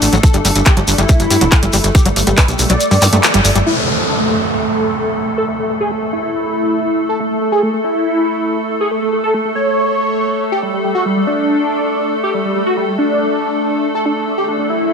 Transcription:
Already playing: A3 D4 A4
0.02 A1, open hi-hat, shekere
0.13 A1 F#3, closed hi-hat, shekere
0.23 A4, kick, closed hi-hat, shekere
0.34 G1 G3 D4, closed hi-hat, shekere
0.45 G1 G3 D4, open hi-hat, shekere
0.56 G1 D4, closed hi-hat, shekere
0.65 G4, kick, clap, closed hi-hat, shekere
0.77 G1 F#3 D4, closed hi-hat, shekere
0.88 G1 D4, open hi-hat, shekere
0.98 G1 G3 E4, closed hi-hat, shekere
1.09 G3, kick, closed hi-hat, shekere
1.20 G1, closed hi-hat, shekere
1.30 G2, open hi-hat, shekere
1.41 D1 F#3, closed hi-hat, shekere
1.52 kick, clap, closed hi-hat, shekere
1.62 G1 G3, closed hi-hat, shekere
1.73 G1 G3, open hi-hat, shekere
1.84 G1, closed hi-hat, shekere
1.95 G4, kick, closed hi-hat, shekere
2.05 G1 F#3 G3, closed hi-hat, shekere
2.16 G1 G3, open hi-hat, shekere
2.27 G1 G3, closed hi-hat, shekere
2.38 G3 B4, kick, clap, closed hi-hat, shekere
2.48 B1 G3, closed hi-hat, shekere
2.59 B1 G3, open hi-hat, shekere
2.69 B1 F#3 D5, closed hi-hat, shekere
2.80 closed hi-hat, shekere
2.91 G2 G3, open hi-hat, shekere
3.02 G2, clap, open hi-hat, zap, shekere
3.12 G2 A3, closed hi-hat, shekere
3.23 clap, closed hi-hat, shekere
3.34 G1 G3, closed hi-hat, shekere
3.45 G1, open hi-hat, shekere
3.55 G1 G3, closed hi-hat, shekere
3.66 A3 E4 A4, downlifter
3.77 A3
3.88 A3
3.98 A3
4.09 D4
4.20 A3
4.30 A3
4.41 A3
5.38 A4
5.48 A3
5.59 A3
5.70 A3
5.80 G#4
5.91 A3
6.02 A3
6.13 E4
7.09 A4
7.20 A3
7.31 A3
7.41 A3
7.52 G#4
7.63 A3
7.73 A3
7.84 E4
8.81 G#4
8.91 A3
9.02 A3
9.13 A3
9.23 A4
9.34 A3
9.45 A3
9.55 C#5
10.52 G4
10.63 G3
10.73 G3
10.84 G3
10.95 F#4
11.05 G3
11.16 G3
11.27 D4
12.23 G4
12.34 G3
12.45 G3
12.55 G3
12.66 F#4
12.77 G3
12.88 G3
12.98 D4
13.95 A4, riser
14.05 D4
14.16 D4
14.27 D4
14.38 G4
14.48 D4
14.59 D4
14.70 E4

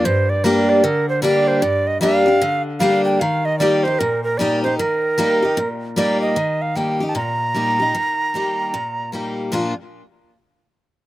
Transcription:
0.05 G2 C5
0.29 D5
0.44 G3 A#3 D4 G4 A#4
0.69 D5
0.84 D3 A#4
1.09 C5
1.22 G3 A#3 D4 G4 D5
1.48 C5
1.62 G2 D5
1.87 D#5
2.01 G3 A#3 D4 G4 F5
2.26 D4 G4
2.42 D3
2.80 G3 A#3 D4 G4 F5
3.05 G5
3.20 D#3 F5
3.45 D#5
3.59 G3 A#3 D#4 G4 D5
3.83 G4 C5
3.87 D#4
3.99 A#2 A#4
4.24 A#4
4.38 G3 A#3 D#4 G4 D5
4.63 D#4 G4 C5
4.78 D#3 A#4
5.18 G3 A#3 D#4 G4
5.43 D#4 G4
5.57 A#2
5.96 G3 A#3 D#4 G4 D5
6.22 D#5
6.36 D#3
6.62 F5
6.75 G3 A#3 D#4 G4 G5
7.00 D#4 G4
7.09 A5
7.15 A#2 A#5
7.54 G3 A#3 D#4 G4
7.80 D#4 G4
7.95 D#3
8.34 G3 A#3 D#4 G4
8.74 A#2
9.12 G3 A#3 D#4 G4
9.52 A#2 F3 A#3 D4 F4

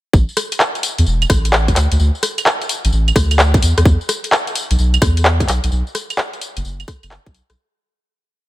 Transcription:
0.13 A1, kick, tambourine
0.29 tambourine
0.37 cross-stick, open hi-hat, tambourine
0.52 closed hi-hat, tambourine
0.60 clap, tambourine
0.75 closed hi-hat, tambourine
0.83 open hi-hat, tambourine
0.98 E2, closed hi-hat, tambourine
1.06 E1, tambourine
1.22 closed hi-hat, tambourine, claves
1.30 A1, kick, cross-stick, open hi-hat, tambourine
1.45 closed hi-hat, tambourine
1.53 clap, tambourine
1.68 kick, closed hi-hat, tambourine
1.76 D2, clap, open hi-hat, tambourine
1.92 D2, closed hi-hat, tambourine
1.99 D2, tambourine
2.15 tambourine
2.23 cross-stick, open hi-hat, tambourine
2.38 closed hi-hat, tambourine, claves
2.46 clap, tambourine
2.62 closed hi-hat, tambourine
2.69 open hi-hat, tambourine
2.85 A1, closed hi-hat, tambourine
2.93 A1, tambourine
3.08 closed hi-hat, tambourine, claves
3.16 D2, kick, cross-stick, open hi-hat, tambourine
3.31 closed hi-hat, tambourine, claves
3.39 clap, tambourine
3.54 kick, closed hi-hat, tambourine
3.62 E2, open hi-hat, tambourine
3.77 E2, cross-stick, closed hi-hat, tambourine
3.85 E2, kick, tambourine
4.01 tambourine
4.09 cross-stick, open hi-hat, tambourine
4.24 closed hi-hat, tambourine
4.32 clap, tambourine
4.47 closed hi-hat, tambourine
4.55 open hi-hat, tambourine
4.71 B1, closed hi-hat, tambourine
4.79 B1, tambourine
4.94 closed hi-hat, tambourine, claves
5.02 E2, kick, cross-stick, open hi-hat, tambourine
5.17 closed hi-hat, tambourine
5.25 clap, tambourine
5.40 kick, closed hi-hat, tambourine
5.48 B1, clap, open hi-hat, tambourine
5.64 B1, closed hi-hat, tambourine
5.72 B1, tambourine
5.87 tambourine
5.95 cross-stick, open hi-hat, tambourine
6.10 closed hi-hat, tambourine, claves
6.18 clap, tambourine
6.33 closed hi-hat, tambourine
6.41 open hi-hat, tambourine
6.57 F#1, closed hi-hat, tambourine
6.65 F#1, tambourine
6.80 closed hi-hat, tambourine, claves
6.88 kick, cross-stick, open hi-hat, tambourine
7.03 F#1, closed hi-hat, tambourine, claves
7.11 clap, tambourine
7.26 B1, kick, closed hi-hat, tambourine
7.34 open hi-hat, tambourine
7.50 B1, cross-stick, closed hi-hat, tambourine

